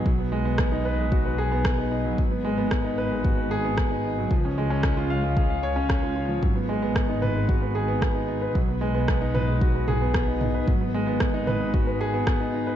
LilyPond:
<<
  \new Staff \with { instrumentName = "Grand piano" } { \time 4/4 \key gis \dorian \tempo 4 = 113 fis16 b16 gis16 b16 b16 dis'16 b'16 gis16 fis'16 b'16 gis'16 b16 b16 dis'16 dis'16 fis16 | fis16 b16 gis16 b16 b16 dis'16 b'16 gis16 fis'16 b'16 gis'16 b16 b16 dis'16 dis'16 fis16 | eis16 cis'16 gis16 cis'16 cis'16 eis'16 eis''16 gis16 gis'16 eis''16 cis''16 cis'16 cis'16 eis'16 eis'16 eis16 | fis16 b16 gis16 b16 b16 dis'16 b'16 gis16 fis'16 b'16 gis'16 b16 b16 dis'16 dis'16 b'16 |
fis16 b16 gis16 b16 b16 dis'16 b'16 gis16 fis'16 b'16 gis'16 b16 b16 dis'16 dis'16 b'16 | fis16 b16 gis16 b16 b16 dis'16 b'16 gis16 fis'16 b'16 gis'16 b16 b16 dis'16 dis'16 b'16 | }
  \new Staff \with { instrumentName = "Double bass section" } { \clef bass \time 4/4 \key gis \dorian b,,1 | gis,,1 | cis,1 | gis,,1 |
b,,1 | gis,,1 | }
  \new DrumStaff \with { instrumentName = "Drums" } \drummode { \time 4/4 bd4 <bd ss>4 bd4 <bd ss>4 | bd4 <bd ss>4 bd4 <bd ss>4 | bd4 <bd ss>4 bd4 <bd ss>4 | bd4 <bd ss>8 toml8 bd4 <bd ss>4 |
bd4 <bd ss>8 toml8 bd8 toml8 <bd ss>8 toml8 | bd4 <bd ss>8 toml8 bd4 <bd ss>4 | }
>>